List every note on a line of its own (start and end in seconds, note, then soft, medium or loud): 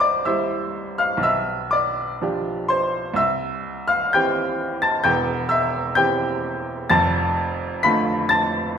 0.00 0.24 C2 medium
0.00 0.27 C5 medium
0.00 0.25 D5 medium
0.00 1.27 C6 medium
0.00 0.26 D6 loud
0.25 1.20 G3 medium
0.25 1.20 E4 medium
0.25 1.21 C5 medium
0.25 0.96 E5 medium
0.25 1.00 E6 medium
0.98 1.22 F5 medium
0.98 1.24 F6 loud
1.17 2.15 B1 medium
1.23 1.69 E5 medium
1.23 1.72 E6 loud
1.71 2.65 D5 medium
1.71 2.68 D6 medium
2.22 3.13 F3 soft
2.22 3.13 D4 medium
2.22 3.14 G4 medium
2.68 3.14 C5 medium
2.68 3.17 C6 medium
3.14 4.08 C2 medium
3.14 3.85 E5 medium
3.14 3.88 E6 loud
3.88 4.11 F5 medium
3.88 4.12 F6 loud
4.13 5.02 E3 medium
4.13 5.02 C4 medium
4.13 5.02 G4 medium
4.13 4.79 G5 medium
4.13 4.82 G6 loud
4.82 5.04 A5 medium
4.82 5.05 A6 loud
5.03 5.93 E1 medium
5.03 5.94 E2 medium
5.03 5.47 G5 medium
5.03 5.50 G6 loud
5.49 5.94 E5 medium
5.49 5.96 E6 loud
5.95 6.87 E3 medium
5.95 6.87 C4 medium
5.95 6.87 G4 medium
5.95 6.87 G5 medium
5.95 6.90 G6 loud
6.90 7.81 F1 medium
6.90 7.81 F2 medium
6.90 7.80 A5 loud
6.90 7.84 A6 loud
7.83 8.75 D3 medium
7.83 8.75 A3 medium
7.83 8.75 F4 medium
7.83 8.28 B5 medium
7.83 8.31 B6 loud
8.29 8.75 A5 medium
8.29 8.78 A6 loud